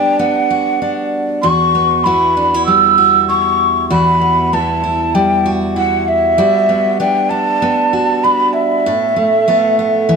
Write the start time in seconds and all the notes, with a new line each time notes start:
Already playing: G3 B3 D4 G5
0.19 B3 F#5
0.50 F#4
0.82 D4
1.42 E2 F#4 C#6
1.75 B3
2.04 B3 E4 F#4 B5
2.37 D4
2.54 E4
2.65 G3 E6
2.98 F#4
3.28 E4 C#6
3.90 E2 F#4 B5
4.21 B3
4.53 B3 E4 A5
4.84 E4
5.14 G3 G5
5.46 F#4
5.76 E4 F#5
6.08 E5
6.38 G3 F#4
6.69 B3
7.00 B3 D4 G5
7.29 D4 A5
7.62 B3
7.93 F#4
8.23 D4 B5
8.53 E5
8.86 A2 A4
9.16 A3
9.48 A3 B3 A4
9.79 B3
10.09 E3